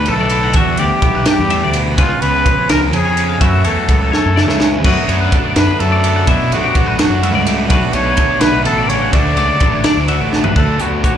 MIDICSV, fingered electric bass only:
0, 0, Header, 1, 2, 480
1, 0, Start_track
1, 0, Key_signature, 2, "major"
1, 0, Tempo, 476948
1, 562, Time_signature, 6, 3, 24, 8
1, 11244, End_track
2, 0, Start_track
2, 0, Title_t, "Fingered electric bass"
2, 0, Program_c, 0, 33
2, 77, Note_on_c, 0, 35, 82
2, 520, Note_off_c, 0, 35, 0
2, 548, Note_on_c, 0, 40, 95
2, 793, Note_off_c, 0, 40, 0
2, 793, Note_on_c, 0, 38, 86
2, 907, Note_off_c, 0, 38, 0
2, 1029, Note_on_c, 0, 35, 82
2, 1255, Note_off_c, 0, 35, 0
2, 1402, Note_on_c, 0, 40, 100
2, 1651, Note_off_c, 0, 40, 0
2, 1651, Note_on_c, 0, 38, 83
2, 1999, Note_on_c, 0, 37, 106
2, 2014, Note_off_c, 0, 38, 0
2, 2110, Note_off_c, 0, 37, 0
2, 2239, Note_on_c, 0, 37, 93
2, 2460, Note_off_c, 0, 37, 0
2, 2719, Note_on_c, 0, 37, 89
2, 2958, Note_off_c, 0, 37, 0
2, 2958, Note_on_c, 0, 41, 89
2, 3400, Note_off_c, 0, 41, 0
2, 3436, Note_on_c, 0, 42, 93
2, 3686, Note_off_c, 0, 42, 0
2, 3686, Note_on_c, 0, 40, 84
2, 3794, Note_off_c, 0, 40, 0
2, 3913, Note_on_c, 0, 37, 83
2, 4136, Note_off_c, 0, 37, 0
2, 4285, Note_on_c, 0, 42, 98
2, 4519, Note_off_c, 0, 42, 0
2, 4519, Note_on_c, 0, 37, 76
2, 4877, Note_off_c, 0, 37, 0
2, 4877, Note_on_c, 0, 42, 100
2, 4988, Note_off_c, 0, 42, 0
2, 5118, Note_on_c, 0, 42, 90
2, 5338, Note_off_c, 0, 42, 0
2, 5601, Note_on_c, 0, 42, 88
2, 5710, Note_off_c, 0, 42, 0
2, 5841, Note_on_c, 0, 42, 79
2, 6279, Note_off_c, 0, 42, 0
2, 6314, Note_on_c, 0, 47, 89
2, 6556, Note_on_c, 0, 35, 82
2, 6571, Note_off_c, 0, 47, 0
2, 6667, Note_off_c, 0, 35, 0
2, 6800, Note_on_c, 0, 33, 85
2, 7018, Note_off_c, 0, 33, 0
2, 7145, Note_on_c, 0, 42, 105
2, 7382, Note_off_c, 0, 42, 0
2, 7382, Note_on_c, 0, 37, 81
2, 7752, Note_off_c, 0, 37, 0
2, 7752, Note_on_c, 0, 35, 105
2, 7864, Note_off_c, 0, 35, 0
2, 7990, Note_on_c, 0, 35, 94
2, 8212, Note_off_c, 0, 35, 0
2, 8475, Note_on_c, 0, 35, 94
2, 8718, Note_off_c, 0, 35, 0
2, 8718, Note_on_c, 0, 33, 89
2, 9157, Note_off_c, 0, 33, 0
2, 9194, Note_on_c, 0, 38, 88
2, 9440, Note_off_c, 0, 38, 0
2, 9440, Note_on_c, 0, 37, 88
2, 9548, Note_off_c, 0, 37, 0
2, 9670, Note_on_c, 0, 33, 83
2, 9892, Note_off_c, 0, 33, 0
2, 10036, Note_on_c, 0, 38, 92
2, 10273, Note_off_c, 0, 38, 0
2, 10273, Note_on_c, 0, 33, 80
2, 10604, Note_off_c, 0, 33, 0
2, 10627, Note_on_c, 0, 38, 89
2, 10852, Note_off_c, 0, 38, 0
2, 10872, Note_on_c, 0, 38, 75
2, 11204, Note_off_c, 0, 38, 0
2, 11244, End_track
0, 0, End_of_file